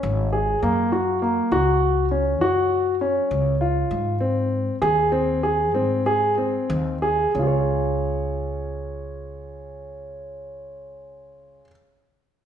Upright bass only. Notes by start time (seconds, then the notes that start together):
0.03 G#1
0.63 F#2
1.52 C#2
2.41 F#2
3.31 C#2
3.91 G#2
4.82 D#2
5.75 G#2
6.70 D#2
7.35 C#2